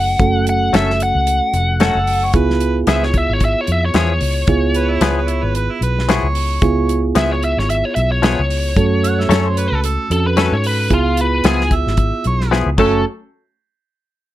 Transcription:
Already playing: F#1 A3 C#4 F#4 A4 F#5
0.19 F#1 A3 C#4 F#4 A4, kick, closed hi-hat
0.47 F#5, closed hi-hat
0.73 F#1 F#3 A3 C#4 A4 E5, snare, closed hi-hat
0.90 snare
1.00 F#5, closed hi-hat
1.15 C#2
1.27 closed hi-hat
1.53 F1, closed hi-hat
1.80 F#3 A3 C#4 F#4 A4, snare, closed hi-hat
1.95 F#1 A4
2.07 open hi-hat
2.24 C#5
2.33 C#2 B3 E4 F4 G#4 B4, kick, closed hi-hat
2.50 snare
2.60 closed hi-hat
2.87 C#2 F3 B3 E4 G#4 E5, snare, closed hi-hat
3.03 C#5, snare
3.14 E5, kick, closed hi-hat
3.29 G#1
3.33 C#5
3.40 kick, closed hi-hat
3.45 E5
3.61 C#5
3.67 F2, closed hi-hat
3.72 E5
3.85 C#5
3.94 E2 F3 B3 E4 G#4 C#5, snare, closed hi-hat
4.21 C#2, open hi-hat
4.47 C#2 B3 E4 F4 G#4, kick, closed hi-hat
4.74 B4, closed hi-hat
4.92 E4
5.01 C#2 F3 B3 E4 G#4 B4, snare, closed hi-hat
5.18 B4
5.28 E4, closed hi-hat
5.43 G#1 B4
5.55 B4, closed hi-hat
5.72 E4
5.81 B1 B4, closed hi-hat
5.99 snare
6.09 F3 B3 E4 G#4 C#5, snare, closed hi-hat
6.23 C#2
6.35 open hi-hat
6.62 C#2 B3 E4 F4 G#4, kick, closed hi-hat
6.89 closed hi-hat
7.15 C#2 F3 B3 E4 G#4 E5, snare, closed hi-hat
7.32 C#5
7.43 E5, closed hi-hat
7.57 G#1 C#5, snare
7.70 E5, closed hi-hat
7.85 C#5
7.95 B1 E5, closed hi-hat
8.12 C#5
8.22 F3 B3 E4 G#4 C#5, snare, closed hi-hat
8.39 C#2
8.50 open hi-hat
8.76 F#2 A3 C#4 F#4 A4, kick, closed hi-hat
9.04 F#5, closed hi-hat
9.20 E5, snare
9.29 F#2 F#3 A3 C#4 A4 C#5, snare, closed hi-hat
9.47 C5
9.57 B4, closed hi-hat
9.72 C#2
9.84 A4, closed hi-hat
10.10 F2 C#4 F#4 A4, closed hi-hat
10.27 B4
10.37 F#3 A3 C#4 A4, snare, closed hi-hat
10.52 G#2 C#5
10.64 B4, open hi-hat
10.90 C#2 B3 E4 F4 G#4, kick, closed hi-hat
11.17 B4, closed hi-hat
11.44 C#2 F3 B3 E4 G#4, snare, closed hi-hat
11.48 G#4
11.61 snare
11.71 E5, kick, closed hi-hat
11.86 G#1, snare
11.97 kick, closed hi-hat
12.24 B1 C#5, closed hi-hat
12.41 snare
12.51 F3 B3 E4 G#4, snare
12.66 C#2
12.78 F#1 F#3 A3 C#4 F#4 A4 C#5, kick, crash

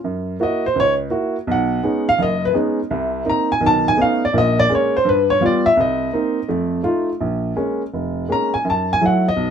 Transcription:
0.04 F#2
0.40 A#3 E4 F#4 D#5
0.66 C5
0.76 C#2
0.80 C#5
1.10 A#3 E4 F#4
1.47 B1
1.52 F#5
1.83 G#3 B3 C#4 D#4
2.09 F5
2.18 F#1 F#2
2.23 D#5
2.45 B4
2.54 G#3 B3 C#4 D#4
2.91 C2 C3
3.25 A#3 C4 D#4
3.30 A#5
3.52 G#5
3.60 B1 D#3
3.66 A5
3.88 G#5
3.97 A3 B3 C#4 D#4
4.02 F5
4.25 D5
4.33 A#1 A#2
4.38 D#5
4.59 D5
4.70 G#3 A#3 C#4
4.75 C#5
4.97 C5
5.05 G2 B4
5.30 C#5
5.41 G3 B3 F4
5.46 D5
5.66 E5
5.77 C2 D#5
6.13 A#3 C4 D#4
6.48 F2 A3
6.83 A3 D#4 F4
7.21 A#1
7.56 G#3 A#3 C#4
7.94 F1
8.29 G#3 A#3 C#4 A#5
8.54 G#5
8.65 F#2
8.70 A5
8.93 G#5
9.01 F#3 A3 E4
9.06 F#5
9.28 D#5
9.36 B1

